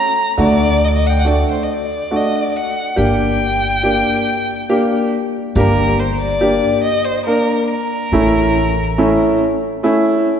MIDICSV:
0, 0, Header, 1, 4, 480
1, 0, Start_track
1, 0, Key_signature, -2, "minor"
1, 0, Tempo, 859599
1, 222, Time_signature, 3, 2, 24, 8
1, 5806, End_track
2, 0, Start_track
2, 0, Title_t, "Violin"
2, 0, Program_c, 0, 40
2, 0, Note_on_c, 0, 82, 91
2, 205, Note_off_c, 0, 82, 0
2, 231, Note_on_c, 0, 74, 102
2, 472, Note_on_c, 0, 75, 87
2, 481, Note_off_c, 0, 74, 0
2, 496, Note_on_c, 0, 74, 64
2, 504, Note_off_c, 0, 75, 0
2, 535, Note_on_c, 0, 75, 82
2, 543, Note_off_c, 0, 74, 0
2, 595, Note_on_c, 0, 78, 70
2, 603, Note_off_c, 0, 75, 0
2, 610, Note_on_c, 0, 79, 62
2, 619, Note_off_c, 0, 78, 0
2, 662, Note_on_c, 0, 78, 85
2, 670, Note_off_c, 0, 79, 0
2, 712, Note_off_c, 0, 78, 0
2, 723, Note_on_c, 0, 74, 77
2, 826, Note_off_c, 0, 74, 0
2, 843, Note_on_c, 0, 72, 64
2, 910, Note_on_c, 0, 75, 51
2, 919, Note_off_c, 0, 72, 0
2, 968, Note_on_c, 0, 74, 73
2, 977, Note_off_c, 0, 75, 0
2, 1206, Note_on_c, 0, 75, 78
2, 1215, Note_off_c, 0, 74, 0
2, 1314, Note_on_c, 0, 74, 69
2, 1322, Note_off_c, 0, 75, 0
2, 1433, Note_on_c, 0, 78, 75
2, 1441, Note_off_c, 0, 74, 0
2, 1669, Note_off_c, 0, 78, 0
2, 1673, Note_on_c, 0, 79, 92
2, 2847, Note_off_c, 0, 79, 0
2, 3107, Note_on_c, 0, 70, 92
2, 3348, Note_on_c, 0, 72, 77
2, 3356, Note_off_c, 0, 70, 0
2, 3461, Note_off_c, 0, 72, 0
2, 3464, Note_on_c, 0, 74, 86
2, 3801, Note_off_c, 0, 74, 0
2, 3816, Note_on_c, 0, 75, 85
2, 3934, Note_on_c, 0, 72, 85
2, 3942, Note_off_c, 0, 75, 0
2, 4051, Note_off_c, 0, 72, 0
2, 4054, Note_on_c, 0, 70, 72
2, 4281, Note_off_c, 0, 70, 0
2, 4291, Note_on_c, 0, 70, 89
2, 5231, Note_off_c, 0, 70, 0
2, 5806, End_track
3, 0, Start_track
3, 0, Title_t, "Upright piano"
3, 0, Program_c, 1, 0
3, 210, Note_on_c, 1, 57, 69
3, 210, Note_on_c, 1, 62, 68
3, 210, Note_on_c, 1, 66, 77
3, 456, Note_off_c, 1, 57, 0
3, 456, Note_off_c, 1, 62, 0
3, 456, Note_off_c, 1, 66, 0
3, 697, Note_on_c, 1, 57, 56
3, 697, Note_on_c, 1, 66, 61
3, 698, Note_on_c, 1, 62, 58
3, 940, Note_off_c, 1, 57, 0
3, 940, Note_off_c, 1, 66, 0
3, 941, Note_off_c, 1, 62, 0
3, 1178, Note_on_c, 1, 57, 55
3, 1179, Note_on_c, 1, 62, 56
3, 1180, Note_on_c, 1, 66, 67
3, 1421, Note_off_c, 1, 57, 0
3, 1422, Note_off_c, 1, 62, 0
3, 1422, Note_off_c, 1, 66, 0
3, 1653, Note_on_c, 1, 62, 65
3, 1654, Note_on_c, 1, 58, 63
3, 1655, Note_on_c, 1, 67, 75
3, 1899, Note_off_c, 1, 62, 0
3, 1900, Note_off_c, 1, 58, 0
3, 1900, Note_off_c, 1, 67, 0
3, 2140, Note_on_c, 1, 67, 62
3, 2141, Note_on_c, 1, 58, 52
3, 2141, Note_on_c, 1, 62, 54
3, 2382, Note_off_c, 1, 67, 0
3, 2383, Note_off_c, 1, 58, 0
3, 2383, Note_off_c, 1, 62, 0
3, 2621, Note_on_c, 1, 58, 78
3, 2622, Note_on_c, 1, 62, 61
3, 2622, Note_on_c, 1, 67, 87
3, 2863, Note_off_c, 1, 58, 0
3, 2863, Note_off_c, 1, 62, 0
3, 2863, Note_off_c, 1, 67, 0
3, 3105, Note_on_c, 1, 62, 66
3, 3106, Note_on_c, 1, 58, 76
3, 3106, Note_on_c, 1, 67, 66
3, 3344, Note_off_c, 1, 62, 0
3, 3345, Note_off_c, 1, 58, 0
3, 3345, Note_off_c, 1, 67, 0
3, 3578, Note_on_c, 1, 62, 57
3, 3579, Note_on_c, 1, 58, 54
3, 3580, Note_on_c, 1, 67, 72
3, 3820, Note_off_c, 1, 62, 0
3, 3821, Note_off_c, 1, 58, 0
3, 3821, Note_off_c, 1, 67, 0
3, 4058, Note_on_c, 1, 58, 61
3, 4059, Note_on_c, 1, 62, 59
3, 4060, Note_on_c, 1, 70, 65
3, 4300, Note_off_c, 1, 58, 0
3, 4300, Note_off_c, 1, 62, 0
3, 4301, Note_off_c, 1, 70, 0
3, 4538, Note_on_c, 1, 57, 78
3, 4539, Note_on_c, 1, 61, 66
3, 4540, Note_on_c, 1, 64, 76
3, 4779, Note_off_c, 1, 57, 0
3, 4779, Note_off_c, 1, 61, 0
3, 4780, Note_off_c, 1, 64, 0
3, 5015, Note_on_c, 1, 57, 73
3, 5016, Note_on_c, 1, 61, 76
3, 5018, Note_on_c, 1, 64, 78
3, 5257, Note_off_c, 1, 57, 0
3, 5257, Note_off_c, 1, 61, 0
3, 5258, Note_off_c, 1, 64, 0
3, 5490, Note_on_c, 1, 57, 69
3, 5492, Note_on_c, 1, 61, 70
3, 5494, Note_on_c, 1, 64, 90
3, 5733, Note_off_c, 1, 57, 0
3, 5734, Note_off_c, 1, 61, 0
3, 5735, Note_off_c, 1, 64, 0
3, 5806, End_track
4, 0, Start_track
4, 0, Title_t, "Upright bass"
4, 0, Program_c, 2, 32
4, 212, Note_on_c, 2, 38, 88
4, 793, Note_off_c, 2, 38, 0
4, 1662, Note_on_c, 2, 31, 75
4, 2239, Note_off_c, 2, 31, 0
4, 3103, Note_on_c, 2, 31, 93
4, 3678, Note_off_c, 2, 31, 0
4, 4534, Note_on_c, 2, 33, 78
4, 5110, Note_off_c, 2, 33, 0
4, 5806, End_track
0, 0, End_of_file